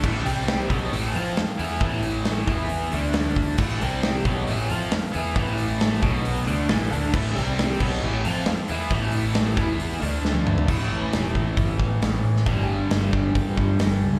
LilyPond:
<<
  \new Staff \with { instrumentName = "Overdriven electric guitar" } { \clef bass \time 4/4 \key a \minor \tempo 4 = 135 <a, e a>8 <c g c'>4 <b, fis b>8 <a, e a>8 <f c' f'>8 r8 <e b e'>8 | <a, e a>4. <e b e'>4 <d a d'>4. | <a, e a>8 <c g c'>4 <b, fis b>8 <a, e a>8 <f c' f'>8 r8 <e b e'>8 | <a, e a>4. <b, fis b>4 <d a d'>8 <a, e a>8 <d a d'>8 |
<a, e a>8 <c g c'>4 <b, fis b>8 <a, e a>8 <f c' f'>8 r8 <e b e'>8 | <a, e a>4. <e b e'>4 <d a d'>4. | <a, e a>1 | <g, d g>1 | }
  \new Staff \with { instrumentName = "Overdriven electric guitar" } { \clef bass \time 4/4 \key a \minor <a, e a>8 <c g c'>4 <b, fis b>8 <a, e a>8 <f c' f'>8 r8 <e b e'>8 | <a, e a>4. <e b e'>4 <d a d'>4. | <a, e a>8 <c g c'>4 <b, fis b>8 <a, e a>8 <f c' f'>8 r8 <e b e'>8 | <a, e a>4. <b, fis b>4 <d a d'>8 <a, e a>8 <d a d'>8 |
<a, e a>8 <c g c'>4 <b, fis b>8 <a, e a>8 <f c' f'>8 r8 <e b e'>8 | <a, e a>4. <e b e'>4 <d a d'>4. | <a, e a>1 | <g, d g>1 | }
  \new Staff \with { instrumentName = "Fingered electric bass" } { \clef bass \time 4/4 \key a \minor a,,8 c,4 b,,8 a,,8 f,8 r8 e,8 | a,,4. e,4 d,4. | a,,8 c,4 b,,8 a,,8 f,8 r8 e,8 | a,,4. b,,4 d,8 a,,8 d,8 |
a,,8 c,4 b,,8 a,,8 f,8 r8 e,8 | a,,4. e,4 d,4. | a,,8 a,8 e,,8 a,,8 g,,8 a,,8 a,,8 a,8 | g,,4 g,,8 g,,8 g,8 g,8 g,,8 cis,8 | }
  \new DrumStaff \with { instrumentName = "Drums" } \drummode { \time 4/4 <cymc bd>8 hho8 <hho sn>8 <hho bd>8 hho8 hho8 <hho sn>8 hho8 | <hho bd>8 hho8 <hho sn>8 <hho bd>8 hho8 hho8 <hho sn>8 <hho bd>8 | <cymc bd>8 hho8 <hho sn>8 <hho bd>8 hho8 hho8 <hho sn>8 hho8 | <hho bd>8 hho8 <hho sn>8 <hho bd>8 hho8 hho8 <hho sn>8 hho8 |
<cymc bd>8 hho8 <hho sn>8 <cymc bd>8 r8 hho8 <hho sn>8 hho8 | <hho bd>8 hho8 <hho sn>8 <hho bd>8 hho8 hho8 sn16 tommh16 toml16 tomfh16 | <cymc bd>4 <hho sn>8 bd8 <hho bd>8 bd8 <hho sn>8. sn16 | <hho bd>4 <hho sn>8 bd8 <hho bd>8 bd8 <hho sn>4 | }
>>